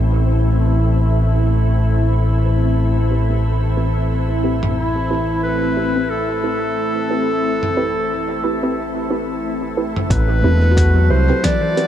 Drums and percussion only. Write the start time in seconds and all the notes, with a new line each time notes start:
4.63 mid tom
7.63 mid tom
9.96 mid tom
10.10 kick, closed hi-hat
10.77 kick, closed hi-hat
11.44 kick, snare, closed hi-hat
11.77 closed hi-hat